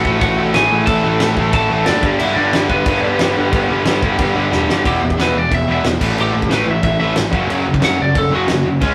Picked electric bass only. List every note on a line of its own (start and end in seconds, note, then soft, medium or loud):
0.05 0.20 A1 medium
0.22 0.36 A1 medium
0.37 0.52 A1 medium
0.54 0.69 A1 loud
0.71 0.85 A1 medium
0.87 1.02 A1 loud
1.03 1.18 A1 loud
1.21 1.35 A1 loud
1.37 1.51 A1 medium
1.53 1.68 A1 medium
1.70 1.85 A1 medium
1.87 2.01 F#1 loud
2.03 2.18 G1 medium
2.20 2.35 G1 loud
2.36 2.51 G1 medium
2.53 2.68 G1 medium
2.70 2.84 G1 loud
2.86 3.01 G1 loud
3.03 3.18 G1 medium
3.20 3.34 G1 loud
3.37 3.51 G1 medium
3.53 3.67 G1 loud
3.70 3.84 G1 loud
3.85 4.00 G1 loud
4.02 4.17 G1 loud
4.19 4.33 G1 medium
4.36 4.50 G1 medium
4.53 4.67 E1 loud
4.68 4.83 F#1 medium
4.86 4.97 E1 medium
5.02 5.13 E1 medium
5.17 5.29 E1 medium
5.34 5.45 E1 medium
5.51 5.63 E1 loud
5.67 5.79 E1 medium
5.84 5.95 E1 loud
6.01 6.12 A1 medium
6.17 6.29 A1 medium
6.34 6.45 A1 medium
6.51 6.62 A1 loud
6.66 6.78 A1 medium
6.83 6.95 A1 loud
7.00 7.12 A1 medium
7.16 7.28 G#1 loud
7.33 7.44 F#1 medium
7.48 7.60 F#1 medium
7.66 7.78 F#1 medium
7.83 7.94 F#1 loud
7.99 8.11 F#1 medium
8.15 8.27 F#1 loud
8.33 8.44 F#1 medium
8.49 8.60 F#1 loud
8.65 8.77 F#1 medium
8.82 8.93 C#2 medium